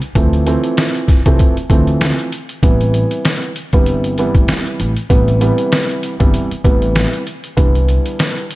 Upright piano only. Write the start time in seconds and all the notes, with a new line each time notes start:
0.15 E3 F3 A3 C4
0.47 E3 F3 A3 C4
1.26 E3 F3 A3 C4
1.69 E3 F3 A3 C4
2.63 C3 E3 G3 B3
3.73 C3 E3 G3 B3
4.19 C3 E3 G3 B3
5.09 C3 E3 G3 B3
5.41 C3 E3 G3 B3
6.19 C3 E3 G3 B3
6.64 C3 E3 G3 B3
7.57 D3 E3 G3 B3